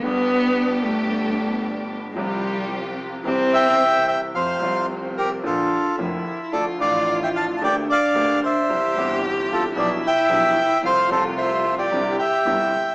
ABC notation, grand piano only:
X:1
M:4/4
L:1/8
Q:1/4=111
K:Cphr
V:1 name="Grand piano" clef=bass
[G,,,G,,=D,G,=B,G]8 | [C,,C,F,G,CG]4 [C,,C,=E,G,CG]4 | [K:F] [F,,C,F,A,F] [C,,C,F,A,F]3 [B,,,B,,D,F,B,F] z [F,,,F,,D,F,B,F] z | [D,,D,F,A,F] [A,,,A,,D,F,A,F]3 [D,,D,A,B,G] z [D,,D,A,B,G] z |
[C,,C,E,G,CG] [G,,,G,,E,G,CG]3 [=B,,,=B,,F,=B,DG] z [B,,,B,,F,B,DG] z | [C,,C,F,A,CA] [C,,C,F,A,CA]3 [C,,C,D,G,CE] z [G,,,G,,D,G,CE] z |]